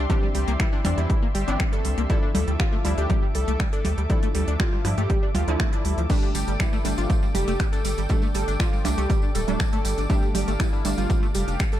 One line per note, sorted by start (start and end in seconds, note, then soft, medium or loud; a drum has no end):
0.00 2.06 G4 medium
0.00 2.06 D5 medium
0.00 6.06 E5 medium
0.00 2.06 C6 medium
0.10 0.82 E3 medium
0.10 0.15 G3 loud
0.10 0.82 C4 medium
0.10 0.82 D4 loud
0.10 0.28 G4 loud
0.10 kick loud
0.10 closed hi-hat soft
0.10 percussion blips loud
0.23 0.27 G3 medium
0.35 0.44 C2 loud
0.35 0.40 G3 medium
0.35 0.53 G4 medium
0.35 open hi-hat loud
0.48 0.57 C2 medium
0.48 0.52 A#3 loud
0.48 closed hi-hat soft
0.60 0.68 G3 loud
0.60 0.87 E4 medium
0.60 finger snap loud
0.60 kick loud
0.60 closed hi-hat soft
0.73 0.80 D4 medium
0.85 0.95 E2 medium
0.85 1.00 E3 medium
0.85 0.90 G3 loud
0.85 1.00 C4 medium
0.85 1.00 D4 loud
0.85 finger snap soft
0.85 open hi-hat loud
0.85 percussion blips loud
0.97 1.07 E2 medium
0.97 1.02 G3 medium
0.97 1.25 E4 loud
0.97 closed hi-hat soft
1.10 1.15 G3 medium
1.10 kick loud
1.10 closed hi-hat soft
1.23 1.27 A#3 loud
1.34 1.44 G1 loud
1.34 1.43 G3 loud
1.34 1.62 G4 loud
1.34 open hi-hat loud
1.48 1.57 G1 medium
1.48 2.07 E3 medium
1.48 2.07 C4 medium
1.48 1.55 D4 medium
1.48 2.07 D4 loud
1.48 closed hi-hat soft
1.60 1.65 G3 loud
1.60 finger snap loud
1.60 kick loud
1.60 closed hi-hat soft
1.60 percussion blips loud
1.72 1.77 G3 medium
1.72 2.00 A4 loud
1.72 closed hi-hat soft
1.85 1.94 C2 loud
1.85 1.90 G3 medium
1.85 open hi-hat loud
1.98 2.07 C2 medium
1.98 2.02 A#3 loud
1.98 closed hi-hat soft
2.10 2.82 F3 medium
2.10 2.18 G3 loud
2.10 2.82 D4 medium
2.10 2.82 E4 loud
2.10 2.28 A4 loud
2.10 11.80 A4 medium
2.10 11.80 D6 medium
2.10 kick loud
2.10 closed hi-hat soft
2.23 2.30 D4 medium
2.35 2.44 D2 loud
2.35 2.40 G3 loud
2.35 2.53 A4 loud
2.35 open hi-hat loud
2.35 percussion blips loud
2.48 2.57 D2 medium
2.48 2.52 G3 medium
2.48 closed hi-hat soft
2.60 2.65 G3 medium
2.60 2.87 F4 loud
2.60 finger snap loud
2.60 kick loud
2.60 closed hi-hat soft
2.73 2.77 A3 loud
2.85 2.94 D2 loud
2.85 4.07 F3 medium
2.85 2.93 G3 loud
2.85 4.07 D4 medium
2.85 4.07 E4 loud
2.85 open hi-hat loud
2.98 3.07 D2 medium
2.98 3.05 D4 medium
2.98 3.25 G4 loud
2.98 closed hi-hat soft
3.10 3.15 G3 loud
3.10 kick loud
3.10 closed hi-hat soft
3.10 percussion blips loud
3.23 3.27 G3 medium
3.35 3.44 C2 medium
3.35 3.40 G3 medium
3.35 3.62 A4 loud
3.35 open hi-hat loud
3.48 3.57 C2 medium
3.48 3.52 A3 loud
3.48 closed hi-hat soft
3.60 3.68 G3 loud
3.60 finger snap loud
3.60 kick loud
3.60 closed hi-hat soft
3.73 3.80 D4 medium
3.73 4.00 A4 loud
3.73 closed hi-hat soft
3.85 3.94 D2 loud
3.85 3.90 G3 loud
3.85 open hi-hat loud
3.85 percussion blips loud
3.98 4.07 D2 medium
3.98 4.02 G3 medium
3.98 closed hi-hat soft
4.10 4.82 F3 medium
4.10 4.15 G3 medium
4.10 4.82 D4 medium
4.10 4.82 E4 loud
4.10 4.28 A4 loud
4.10 kick loud
4.10 closed hi-hat soft
4.23 4.27 A3 loud
4.23 closed hi-hat soft
4.35 4.44 D2 medium
4.35 4.43 G3 loud
4.35 4.53 A4 medium
4.35 open hi-hat loud
4.48 4.57 D2 medium
4.48 4.55 D4 medium
4.48 closed hi-hat soft
4.60 4.65 G3 loud
4.60 4.87 F4 loud
4.60 finger snap loud
4.60 kick loud
4.60 closed hi-hat soft
4.60 percussion blips loud
4.73 4.77 G3 medium
4.85 4.94 G2 medium
4.85 5.00 F3 medium
4.85 4.90 G3 medium
4.85 5.00 D4 medium
4.85 5.00 E4 loud
4.85 finger snap soft
4.85 open hi-hat loud
4.98 5.07 G2 medium
4.98 5.02 A3 loud
4.98 5.25 G4 loud
4.98 closed hi-hat soft
5.10 5.18 G3 loud
5.10 kick loud
5.10 closed hi-hat soft
5.23 5.30 D4 medium
5.35 5.44 D2 medium
5.35 5.62 F4 loud
5.35 5.43 G4 medium
5.35 open hi-hat loud
5.35 percussion blips loud
5.48 5.57 D2 medium
5.48 6.07 F3 medium
5.48 5.52 F3 medium
5.48 6.07 D4 medium
5.48 6.07 E4 loud
5.48 closed hi-hat soft
5.60 5.72 A3 medium
5.60 finger snap loud
5.60 kick loud
5.60 closed hi-hat soft
5.73 5.84 D4 medium
5.73 6.00 E4 loud
5.73 closed hi-hat soft
5.85 5.94 D2 loud
5.85 5.93 G3 medium
5.85 open hi-hat loud
5.97 6.07 D2 medium
5.97 6.05 F3 medium
5.97 closed hi-hat soft
6.09 6.18 G3 loud
6.09 6.82 G3 loud
6.09 6.82 A3 medium
6.09 6.82 D4 loud
6.09 6.28 G4 loud
6.09 11.80 D5 medium
6.09 10.06 G5 medium
6.09 kick loud
6.09 closed hi-hat soft
6.09 crash medium
6.09 tambourine soft
6.22 6.30 D4 medium
6.22 tambourine soft
6.35 6.44 G1 loud
6.35 6.40 G3 loud
6.35 6.53 G4 medium
6.35 open hi-hat loud
6.35 tambourine medium
6.47 6.57 G1 medium
6.47 6.52 G3 medium
6.47 closed hi-hat soft
6.47 tambourine soft
6.60 6.65 G3 medium
6.60 6.87 E4 medium
6.60 finger snap loud
6.60 kick loud
6.60 closed hi-hat soft
6.60 tambourine medium
6.60 percussion blips loud
6.73 6.77 A3 loud
6.73 tambourine soft
6.85 6.94 G1 loud
6.85 8.07 G3 medium
6.85 6.93 G3 loud
6.85 8.07 A3 medium
6.85 8.07 D4 loud
6.85 open hi-hat loud
6.85 tambourine medium
6.98 7.07 G1 medium
6.98 7.05 D4 medium
6.98 7.25 F4 loud
6.98 closed hi-hat soft
6.98 tambourine soft
7.10 7.15 G3 loud
7.10 kick loud
7.10 closed hi-hat soft
7.10 tambourine medium
7.23 7.27 G3 medium
7.23 tambourine soft
7.35 7.44 F1 loud
7.35 7.40 G3 medium
7.35 7.62 G4 loud
7.35 open hi-hat loud
7.35 tambourine medium
7.35 percussion blips medium
7.47 7.57 F1 medium
7.47 7.52 A3 loud
7.47 closed hi-hat soft
7.47 tambourine soft
7.60 7.68 G3 loud
7.60 finger snap loud
7.60 kick loud
7.60 closed hi-hat soft
7.60 tambourine soft
7.72 7.80 D4 medium
7.72 8.00 A4 loud
7.72 closed hi-hat soft
7.72 tambourine soft
7.85 7.94 G1 loud
7.85 7.90 G3 loud
7.85 open hi-hat loud
7.85 tambourine medium
7.98 8.07 G1 medium
7.98 8.02 G3 medium
7.98 closed hi-hat soft
7.98 tambourine soft
8.09 8.15 G3 medium
8.09 8.82 G3 medium
8.09 8.82 A3 medium
8.09 8.82 D4 loud
8.09 8.28 A4 loud
8.09 kick loud
8.09 closed hi-hat soft
8.09 tambourine medium
8.09 percussion blips medium
8.22 8.27 A3 loud
8.22 tambourine soft
8.34 8.44 G1 medium
8.34 8.43 G3 loud
8.34 8.53 A4 medium
8.34 open hi-hat loud
8.34 tambourine medium
8.48 8.57 G1 medium
8.48 8.55 D4 medium
8.48 closed hi-hat soft
8.48 tambourine soft
8.59 8.65 G3 loud
8.59 8.87 F4 loud
8.59 finger snap loud
8.59 kick loud
8.59 closed hi-hat soft
8.59 tambourine medium
8.73 8.77 G3 medium
8.73 tambourine soft
8.85 8.95 C2 medium
8.85 9.00 G3 medium
8.85 8.90 G3 medium
8.85 9.00 A3 medium
8.85 9.00 D4 loud
8.85 finger snap soft
8.85 open hi-hat loud
8.85 tambourine medium
8.85 percussion blips medium
8.97 9.07 C2 medium
8.97 9.02 A3 loud
8.97 9.25 G4 loud
8.97 closed hi-hat soft
8.97 tambourine soft
9.10 9.18 G3 loud
9.10 kick loud
9.10 closed hi-hat soft
9.10 tambourine medium
9.22 9.30 D4 medium
9.22 tambourine soft
9.35 9.44 D1 loud
9.35 9.40 G3 loud
9.35 9.62 A4 loud
9.35 open hi-hat loud
9.35 tambourine loud
9.48 9.57 D1 medium
9.48 10.07 G3 medium
9.48 9.52 G3 medium
9.48 10.07 A3 medium
9.48 10.07 D4 loud
9.48 closed hi-hat soft
9.48 tambourine soft
9.60 9.65 G3 medium
9.60 finger snap loud
9.60 kick loud
9.60 closed hi-hat soft
9.60 tambourine medium
9.60 percussion blips medium
9.73 9.77 A3 loud
9.73 10.00 A4 loud
9.73 closed hi-hat soft
9.73 tambourine soft
9.85 9.95 G1 medium
9.85 9.93 G3 loud
9.85 open hi-hat loud
9.85 tambourine loud
9.98 10.07 G1 medium
9.98 10.05 D4 medium
9.98 closed hi-hat soft
9.98 tambourine soft
10.10 10.82 G3 loud
10.10 10.15 G3 loud
10.10 10.82 A3 medium
10.10 10.82 D4 loud
10.10 10.28 G4 loud
10.10 11.80 F5 medium
10.10 kick loud
10.10 closed hi-hat soft
10.10 tambourine medium
10.22 10.27 G3 medium
10.22 tambourine soft
10.35 10.44 G1 loud
10.35 10.40 G3 medium
10.35 10.53 G4 medium
10.35 open hi-hat loud
10.35 tambourine loud
10.35 percussion blips medium
10.48 10.57 G1 medium
10.48 10.52 A3 loud
10.48 closed hi-hat soft
10.48 tambourine soft
10.60 10.68 G3 loud
10.60 10.87 E4 loud
10.60 finger snap loud
10.60 kick loud
10.60 closed hi-hat soft
10.60 tambourine medium
10.73 10.80 D4 medium
10.73 tambourine soft
10.85 10.94 G1 loud
10.85 11.80 G3 medium
10.85 10.90 G3 loud
10.85 11.80 A3 medium
10.85 11.80 D4 loud
10.85 open hi-hat loud
10.85 tambourine loud
10.98 11.07 G1 medium
10.98 11.02 G3 medium
10.98 11.25 F4 medium
10.98 closed hi-hat soft
10.98 tambourine soft
11.10 11.15 G3 medium
11.10 kick loud
11.10 closed hi-hat soft
11.10 tambourine medium
11.10 percussion blips medium
11.23 11.27 A3 loud
11.23 tambourine soft
11.34 11.44 F1 medium
11.34 11.43 G3 loud
11.34 11.62 G4 loud
11.34 open hi-hat loud
11.34 tambourine loud
11.48 11.57 F1 medium
11.48 11.55 D4 medium
11.48 closed hi-hat soft
11.48 tambourine soft
11.59 11.65 G3 loud
11.59 finger snap loud
11.59 kick loud
11.59 closed hi-hat soft
11.59 tambourine medium
11.72 11.77 G3 medium
11.72 11.80 A4 loud
11.72 closed hi-hat soft
11.72 tambourine soft